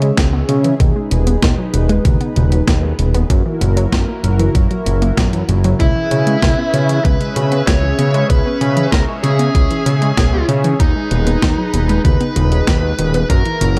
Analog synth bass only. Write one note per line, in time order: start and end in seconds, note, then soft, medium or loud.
0.00 0.12 C#3 medium
0.17 0.43 C#2 loud
0.49 0.74 C#3 medium
0.80 0.93 D#2 loud
1.11 1.37 D#1 medium
1.42 1.55 D#2 medium
1.74 1.99 D#1 medium
2.05 2.18 D#2 medium
2.36 2.62 D#1 medium
2.67 2.93 D#2 loud
2.99 3.24 D#1 medium
3.30 3.43 F#2 loud
3.61 3.87 F#1 medium
3.92 4.05 F#2 medium
4.24 4.49 F#1 medium
4.55 4.68 F#2 medium
4.86 5.12 F#1 medium
5.17 5.43 F#2 loud
5.49 5.74 F#1 loud
5.80 5.93 C#2 loud
6.11 6.37 C#3 medium
6.42 6.55 C#2 medium
6.74 6.99 C#3 medium
7.05 7.18 C#2 medium
7.36 7.62 C#3 medium
7.67 7.93 C#2 loud
7.99 8.24 C#3 loud
8.30 8.43 C#2 loud
8.61 8.87 C#3 medium
8.92 9.05 C#2 medium
9.24 9.49 C#3 medium
9.55 9.68 C#2 medium
9.86 10.12 C#3 medium
10.17 10.43 C#2 loud
10.49 10.74 C#3 loud
10.80 10.93 D#2 loud
11.11 11.37 D#1 medium
11.42 11.55 D#2 medium
11.74 11.99 D#1 medium
12.05 12.18 D#2 medium
12.36 12.62 D#1 medium
12.67 12.93 D#2 loud
12.99 13.24 D#1 loud
13.30 13.43 F#2 loud
13.61 13.79 F#1 medium